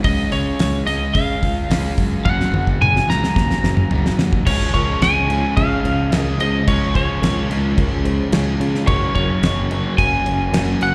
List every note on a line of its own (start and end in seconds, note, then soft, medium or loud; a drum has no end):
0.04 0.24 C#2 medium
0.04 0.85 C#3 medium
0.04 0.86 G#3 loud
0.04 0.86 C#4 loud
0.04 0.32 D#5 medium
0.04 kick loud
0.04 open hi-hat medium
0.32 0.52 C#2 medium
0.32 0.86 C#5 medium
0.32 open hi-hat medium
0.59 0.79 C#2 medium
0.59 snare loud
0.59 open hi-hat medium
0.86 1.06 C#2 medium
0.86 1.68 C#3 medium
0.86 1.69 G#3 medium
0.86 1.72 C#4 medium
0.86 1.16 D#5 medium
0.86 open hi-hat medium
1.14 1.34 C#3 loud
1.14 1.93 F5 medium
1.14 kick loud
1.14 open hi-hat medium
1.42 1.62 C#2 medium
1.42 kick medium
1.42 open hi-hat soft
1.69 1.89 C#2 loud
1.69 2.23 C#3 medium
1.69 2.24 G#3 medium
1.69 4.49 C#4 medium
1.69 snare loud
1.69 open hi-hat medium
1.98 2.17 F#2 medium
1.98 kick medium
1.98 open hi-hat medium
2.25 2.45 F#1 medium
2.25 3.06 F#2 medium
2.25 3.08 C#3 medium
2.25 3.06 F#3 medium
2.25 2.81 F#5 medium
2.25 kick loud
2.25 high tom medium
2.40 snare medium
2.53 2.72 F#1 medium
2.53 high tom medium
2.67 kick medium
2.80 3.00 F#1 medium
2.80 3.10 G#5 loud
2.80 mid tom medium
2.96 snare medium
3.07 3.27 C#2 medium
3.07 3.89 F#2 medium
3.07 3.90 C#3 medium
3.07 3.89 F#3 medium
3.07 4.16 A#5 loud
3.07 snare medium
3.24 snare medium
3.36 3.55 D#2 medium
3.36 kick loud
3.36 snare medium
3.51 snare medium
3.62 3.82 F#1 medium
3.62 snare medium
3.77 mid tom medium
3.90 4.10 F#1 medium
3.90 4.45 F#2 medium
3.90 4.45 C#3 medium
3.90 4.46 F#3 medium
3.90 floor tom medium
4.06 snare medium
4.18 4.38 D#2 medium
4.18 snare loud
4.33 kick medium
4.46 4.67 C#2 medium
4.46 5.32 C#3 medium
4.46 6.66 F3 medium
4.46 5.31 G#3 medium
4.46 5.29 C#4 medium
4.46 4.69 F4 medium
4.46 4.69 G#4 medium
4.46 4.73 C#5 medium
4.46 4.69 C#5 medium
4.46 kick loud
4.46 crash loud
4.46 crash medium
4.74 4.94 C#2 medium
4.74 4.97 F4 loud
4.74 4.97 G#4 medium
4.74 4.97 A#4 loud
4.74 5.02 C#5 medium
4.74 kick medium
4.74 crash medium
5.01 5.42 C#2 medium
5.01 5.24 F4 medium
5.01 5.24 G#4 medium
5.01 5.24 C#5 medium
5.01 5.56 G#5 loud
5.01 snare loud
5.01 crash medium
5.29 6.11 C#3 medium
5.29 6.11 G#3 medium
5.29 6.15 C#4 medium
5.29 5.52 F4 medium
5.29 5.52 G#4 medium
5.29 5.52 C#5 medium
5.29 crash medium
5.57 5.77 C#3 loud
5.57 5.79 F4 medium
5.57 5.79 G#4 medium
5.57 5.80 C#5 medium
5.57 6.19 F5 loud
5.57 kick loud
5.57 crash medium
5.84 6.05 C#2 medium
5.84 6.07 F4 medium
5.84 6.07 G#4 medium
5.84 6.07 C#5 medium
5.84 crash medium
6.11 6.32 C#2 medium
6.11 6.66 C#3 medium
6.11 6.66 G#3 medium
6.11 6.70 C#4 medium
6.11 6.34 F4 medium
6.11 6.35 G#4 medium
6.11 6.35 A#4 loud
6.11 snare loud
6.11 crash medium
6.19 6.41 D#5 loud
6.40 6.60 C#2 medium
6.40 6.62 F4 medium
6.40 6.62 G#4 medium
6.40 6.62 C5 medium
6.40 6.66 D#5 medium
6.40 crash medium
6.67 7.08 C#2 medium
6.67 7.48 C#3 medium
6.67 8.87 F3 medium
6.67 7.49 G#3 medium
6.67 7.49 C#4 medium
6.67 6.89 F4 medium
6.67 6.90 G#4 medium
6.67 6.90 C#5 medium
6.67 6.95 C#5 medium
6.67 kick loud
6.67 crash medium
6.94 7.17 F4 loud
6.94 7.17 G#4 medium
6.94 7.17 C#5 loud
6.94 7.47 C#5 medium
6.94 kick medium
6.94 crash medium
7.21 7.43 C#2 medium
7.21 7.44 F4 medium
7.21 7.44 G#4 medium
7.21 7.44 A#4 medium
7.21 snare loud
7.21 crash medium
7.49 7.71 C#2 medium
7.49 8.31 C#3 medium
7.49 8.32 G#3 medium
7.49 8.36 C#4 medium
7.49 7.72 F4 medium
7.49 7.72 G#4 medium
7.49 7.72 A#4 medium
7.49 crash medium
7.77 8.18 C#2 loud
7.77 7.99 F4 loud
7.77 8.00 G#4 medium
7.77 8.00 A#4 loud
7.77 kick loud
7.77 crash medium
8.05 8.27 F4 medium
8.05 8.27 G#4 medium
8.05 8.27 C5 loud
8.05 crash medium
8.32 8.53 C#2 medium
8.32 8.86 C#3 medium
8.32 8.87 G#3 medium
8.32 10.95 C#4 medium
8.32 8.55 F4 loud
8.32 8.55 G#4 loud
8.32 8.55 C#5 loud
8.32 snare loud
8.32 crash medium
8.60 8.81 C#3 medium
8.60 8.83 F4 medium
8.60 8.82 G#4 medium
8.60 8.83 C#5 loud
8.60 crash medium
8.75 snare soft
8.87 9.08 F#1 loud
8.87 9.74 F#2 medium
8.87 9.70 C#3 medium
8.87 9.70 F#3 medium
8.87 10.95 A#3 medium
8.87 10.95 C#4 medium
8.87 9.10 F#4 medium
8.87 9.10 A#4 medium
8.87 9.13 C#5 loud
8.87 9.10 C#5 loud
8.87 kick loud
8.87 crash medium
9.15 9.36 F#1 loud
9.15 9.38 F#4 loud
9.15 9.39 A#4 medium
9.15 9.94 C#5 medium
9.15 9.38 C#5 loud
9.15 kick medium
9.15 crash medium
9.43 9.83 F#1 medium
9.43 9.66 F#4 medium
9.43 9.66 A#4 medium
9.43 9.66 D#5 medium
9.43 snare loud
9.43 crash medium
9.70 10.52 F#2 medium
9.70 10.53 C#3 medium
9.70 10.52 F#3 medium
9.70 9.93 F#4 medium
9.70 9.93 A#4 medium
9.70 9.94 C#5 medium
9.70 crash medium
9.98 10.18 F#2 loud
9.98 10.21 F#4 medium
9.98 10.21 A#4 medium
9.98 10.21 C#5 medium
9.98 10.82 G#5 loud
9.98 kick loud
9.98 crash medium
10.26 10.46 F#1 loud
10.26 10.48 F#4 medium
10.26 10.48 A#4 medium
10.26 10.48 C#5 medium
10.26 crash medium
10.53 10.74 F#1 loud
10.53 10.95 F#2 medium
10.53 10.95 C#3 medium
10.53 10.95 F#3 medium
10.53 10.75 F#4 loud
10.53 10.75 A#4 medium
10.53 10.76 C#5 loud
10.53 snare loud
10.53 crash medium
10.81 10.95 F#1 medium
10.81 10.95 F#4 medium
10.81 10.95 A#4 medium
10.81 10.95 C#5 medium
10.81 10.95 F#5 loud
10.81 crash medium